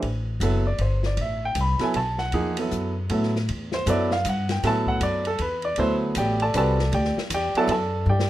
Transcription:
0.02 upright bass A1, ride
0.40 upright bass F#1, grand piano F#3 B3 E4 A4, hi-hat pedal, ride
0.67 grand piano D5
0.78 upright bass G1, grand piano C5, ride
1.03 grand piano D5, snare
1.17 upright bass A1, ride
1.21 grand piano E5
1.45 grand piano G5
1.55 upright bass C2, hi-hat pedal, ride
1.61 grand piano B5
1.79 grand piano F#3 B3 E4 A4, snare, ride
1.83 grand piano G#5
1.94 upright bass B1, grand piano A5, ride
2.18 grand piano F#5, snare
2.32 upright bass E2, grand piano F3 A#3 D#4 G#4, ride
2.57 grand piano F#3 B3 E4 A4, ride
2.71 upright bass F#2, hi-hat pedal
3.10 upright bass A2, grand piano F#3 B3 E4 A4, ride
3.23 snare
3.36 snare
3.49 upright bass E2, ride
3.72 grand piano C5, snare
3.86 upright bass F#2, grand piano F#3 B3 E4 A4 D5, hi-hat pedal, ride
4.11 grand piano F5, snare
4.25 upright bass G2, hi-hat pedal, ride
4.29 grand piano F#5
4.49 grand piano G5, snare, ride
4.63 upright bass A2, grand piano F#3 B3 E4 A4 A5, snare, ride
4.87 grand piano F#5, kick
5.01 upright bass F#2, grand piano D5, hi-hat pedal, ride
5.25 grand piano A4, ride
5.38 upright bass E2, grand piano B4, ride
5.62 grand piano D5, ride
5.76 upright bass D2, grand piano F#3 B3 E4 A4 C5, ride
6.15 upright bass A1, grand piano D5 G5, hi-hat pedal, ride
6.19 grand piano G4
6.40 grand piano A4 D5 A5, ride
6.54 upright bass C2, grand piano G3 C4 F#4 A4 B4 D5 A5, hi-hat pedal, ride
6.79 snare
6.92 upright bass D2, grand piano G4 D5 G5, ride
7.05 snare
7.17 muted upright bass stroke, snare
7.30 upright bass E2, hi-hat pedal, ride
7.34 grand piano G4 D5 G5
7.54 grand piano F#3 B3 E4 A4 D5 A5, muted upright bass stroke, ride
7.67 upright bass F#2, ride
7.72 grand piano A4 D5 A5
8.06 upright bass G2, grand piano D5 G5
8.10 grand piano G4
8.20 snare

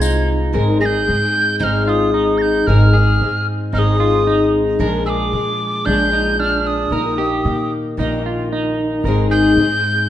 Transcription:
Already playing: upright bass C2, steel-string acoustic guitar G#3 C4 F4 G#4, harmonica C5, tin whistle G#6
0.01 clean electric guitar D#4, tambourine
0.53 upright bass G#1, steel-string acoustic guitar G#2 D#3 G#3 C4 D#4 G#4, clean electric guitar A#4
0.80 steel-string acoustic guitar G#3 C4 D#4 G#4, clean electric guitar G#4, tin whistle A#6
0.86 tin whistle G6
1.07 upright bass G#2, steel-string acoustic guitar G#3 C4 D#4 G#4
1.59 upright bass G#1, steel-string acoustic guitar G#2 D#3 G#3 C4, clean electric guitar D#4, tin whistle G6
1.64 steel-string acoustic guitar D#4 G#4, tin whistle F6
1.85 clean electric guitar F4, tin whistle F6
1.89 tin whistle D#6
2.14 clean electric guitar D#4
2.38 tin whistle G6 A#6
2.67 upright bass G#1, steel-string acoustic guitar G#2 D#3 G#3 C4 D#4 G#4, clean electric guitar A#4, tin whistle F6
2.93 steel-string acoustic guitar G#3 C4 D#4 G#4, clean electric guitar G#4
3.21 upright bass G#2, steel-string acoustic guitar G#3 C4 D#4 G#4
3.72 upright bass G#1, steel-string acoustic guitar G#2 D#3 G#3, clean electric guitar D#4, tin whistle F6
3.76 steel-string acoustic guitar C4 D#4 G#4, tin whistle D#6
4.00 clean electric guitar F4
4.27 clean electric guitar D#4
4.79 upright bass A#1, steel-string acoustic guitar A#2 F3 G#3 D4 G#4, clean electric guitar A#4
5.06 clean electric guitar G#4, tin whistle D6 E6
5.31 upright bass A#2, steel-string acoustic guitar F3 G#3 D4 G#4
5.85 upright bass A#1, steel-string acoustic guitar A#2 F3 G#3 D4, clean electric guitar D4, tin whistle G6
5.90 steel-string acoustic guitar G#4
6.13 clean electric guitar D#4
6.40 clean electric guitar D4, tin whistle F6
6.67 tin whistle D#6
6.91 upright bass A#1, steel-string acoustic guitar A#2 D#3 A#3 D#4 G4, clean electric guitar A#4
7.17 steel-string acoustic guitar A#3 D#4 G4, clean electric guitar G4
7.44 upright bass A#2, steel-string acoustic guitar D#3 A#3 D#4 G4
7.97 upright bass A#1, steel-string acoustic guitar A#2 D#3 A#3 D#4, clean electric guitar D#4
8.03 steel-string acoustic guitar G4
8.26 clean electric guitar F4
8.53 clean electric guitar D#4
9.04 upright bass G#1, steel-string acoustic guitar G#2 D#3 G#3 C4 D#4, clean electric guitar A#4
9.08 steel-string acoustic guitar G#4
9.31 clean electric guitar G#4, tin whistle G6
9.57 upright bass G#2, steel-string acoustic guitar G#3 C4 D#4
9.61 steel-string acoustic guitar G#4

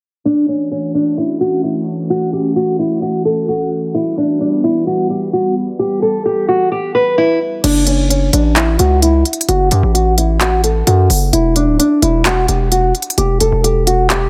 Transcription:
0.25 analog synth pad E3 A3 C#4 F#4, nylon-string guitar D4
0.48 nylon-string guitar C#4
0.72 nylon-string guitar C#4
0.95 nylon-string guitar D4
1.18 nylon-string guitar E4
1.41 nylon-string guitar F#4
1.64 nylon-string guitar E4
2.10 nylon-string guitar F#4
2.33 nylon-string guitar G4
2.56 nylon-string guitar F#4
2.79 nylon-string guitar E4
3.02 nylon-string guitar F#4
3.25 nylon-string guitar A4
3.48 nylon-string guitar F#4
3.95 analog synth pad G3 B3, nylon-string guitar E4
4.18 nylon-string guitar D4
4.41 nylon-string guitar D4
4.64 nylon-string guitar E4
4.87 nylon-string guitar F#4
5.10 nylon-string guitar G4
5.33 nylon-string guitar F#4
5.79 nylon-string guitar G4
6.02 nylon-string guitar A4
6.26 nylon-string guitar G4
6.48 nylon-string guitar F#4
6.72 nylon-string guitar G4
6.95 nylon-string guitar B4
7.18 nylon-string guitar E4
7.64 808-style bass F#1, nylon-string guitar D4, closed hi-hat, crash
7.87 nylon-string guitar C#4, closed hi-hat
8.10 nylon-string guitar C#4, closed hi-hat
8.33 808-style bass A1, nylon-string guitar D4, closed hi-hat
8.56 nylon-string guitar E4, clap, closed hi-hat
8.79 808-style bass C#2, nylon-string guitar F#4, closed hi-hat
9.02 nylon-string guitar E4, closed hi-hat
9.25 closed hi-hat
9.33 closed hi-hat
9.41 closed hi-hat
9.49 808-style bass F#1, nylon-string guitar F#4, closed hi-hat
9.71 808-style bass F#2, nylon-string guitar G4, closed hi-hat
9.83 808-style bass A1
9.94 nylon-string guitar F#4, closed hi-hat
10.18 nylon-string guitar E4, closed hi-hat
10.41 nylon-string guitar F#4, clap, closed hi-hat
10.64 nylon-string guitar A4, closed hi-hat
10.87 808-style bass F#2, nylon-string guitar F#4, closed hi-hat
11.10 808-style bass F#1, open hi-hat
11.33 808-style bass E1, nylon-string guitar E4, closed hi-hat
11.56 nylon-string guitar D4, closed hi-hat
11.68 808-style bass D1
11.79 nylon-string guitar D4, closed hi-hat
12.02 808-style bass E1, nylon-string guitar E4, closed hi-hat
12.25 nylon-string guitar F#4, clap, closed hi-hat
12.48 808-style bass E1, nylon-string guitar G4, closed hi-hat
12.72 nylon-string guitar F#4, closed hi-hat
12.95 closed hi-hat
13.02 closed hi-hat
13.10 closed hi-hat
13.18 808-style bass E1, nylon-string guitar G4, closed hi-hat
13.40 808-style bass E1, nylon-string guitar A4, closed hi-hat
13.52 808-style bass E1
13.64 nylon-string guitar G4, closed hi-hat
13.87 nylon-string guitar F#4, closed hi-hat
14.10 nylon-string guitar G4, clap, closed hi-hat

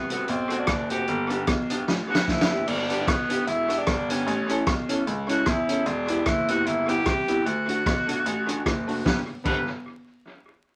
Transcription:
Already playing: grand piano C2, tenor saxophone B3
0.10 hollow-body jazz guitar A3 C4 F#4, tenor saxophone B3, closed hi-hat
0.28 grand piano B1, tenor saxophone C4, muted hollow-body jazz guitar stroke, closed hi-hat
0.50 hollow-body jazz guitar A3 C4 F#4, closed hi-hat
0.59 tenor saxophone D4
0.67 grand piano F#1, muted hollow-body jazz guitar stroke, kick, cross-stick, closed hi-hat
0.89 hollow-body jazz guitar A3 C4 F#4, tenor saxophone G4, closed hi-hat
1.08 grand piano G1, closed hi-hat
1.29 hollow-body jazz guitar B3 D4 G4, closed hi-hat
1.47 grand piano B1, kick, cross-stick, closed hi-hat
1.70 hollow-body jazz guitar B3 D4 G4, closed hi-hat
1.87 grand piano A1, muted hollow-body jazz guitar stroke, snare
2.09 hollow-body jazz guitar B3 D4 G4, tenor saxophone F#4
2.15 snare
2.28 grand piano F#1, tenor saxophone E4, kick, snare
2.41 snare
2.49 hollow-body jazz guitar B3 D4 G4
2.68 grand piano G1, tenor saxophone D4, crash
2.90 hollow-body jazz guitar B3 D4 G4, closed hi-hat
3.07 grand piano B1, tenor saxophone B3, kick, cross-stick, closed hi-hat
3.29 hollow-body jazz guitar B3 D4 G4, closed hi-hat
3.47 grand piano E1, tenor saxophone E4, muted hollow-body jazz guitar stroke, closed hi-hat
3.69 hollow-body jazz guitar B3 D4 G4, closed hi-hat
3.78 tenor saxophone D4
3.87 grand piano G1, muted hollow-body jazz guitar stroke, kick, cross-stick, closed hi-hat
4.09 hollow-body jazz guitar B3 D4 G4, tenor saxophone C#4, closed hi-hat
4.27 grand piano A1, closed hi-hat
4.49 hollow-body jazz guitar C#4 E4 A4, closed hi-hat
4.66 grand piano B1, kick, cross-stick, closed hi-hat
4.89 hollow-body jazz guitar C#4 E4 A4, closed hi-hat
5.06 grand piano C#2, muted hollow-body jazz guitar stroke, closed hi-hat
5.28 hollow-body jazz guitar C#4 E4 A4, tenor saxophone F#4, closed hi-hat
5.46 grand piano E2, tenor saxophone E4, kick, cross-stick, closed hi-hat
5.68 hollow-body jazz guitar C#4 E4 A4, closed hi-hat
5.86 grand piano E1, tenor saxophone D4, closed hi-hat
6.08 hollow-body jazz guitar B3 E4 G4, closed hi-hat
6.26 grand piano F#1, tenor saxophone E4, kick, cross-stick, closed hi-hat
6.48 hollow-body jazz guitar B3 E4 G4, tenor saxophone F#4, closed hi-hat
6.66 grand piano G1, tenor saxophone E4, muted hollow-body jazz guitar stroke, closed hi-hat
6.88 hollow-body jazz guitar B3 E4 G4, tenor saxophone G4, closed hi-hat
7.06 grand piano C2, tenor saxophone G4, muted hollow-body jazz guitar stroke, kick, cross-stick, closed hi-hat
7.28 hollow-body jazz guitar B3 E4 G4, closed hi-hat
7.46 grand piano D2, tenor saxophone F#4, closed hi-hat
7.68 hollow-body jazz guitar A3 D4 F#4, closed hi-hat
7.86 grand piano B1, kick, cross-stick, closed hi-hat
8.07 hollow-body jazz guitar A3 D4 F#4, closed hi-hat
8.25 grand piano A1, muted hollow-body jazz guitar stroke, closed hi-hat
8.47 hollow-body jazz guitar A3 D4 F#4, closed hi-hat
8.66 grand piano F#1, kick, cross-stick, closed hi-hat
8.87 hollow-body jazz guitar A3 D4 F#4, open hi-hat
9.05 grand piano G1, hollow-body jazz guitar B3 D4 G4, tenor saxophone B4, kick, snare
9.44 grand piano G1, hollow-body jazz guitar B3 D4 G4, tenor saxophone B4, kick, crash

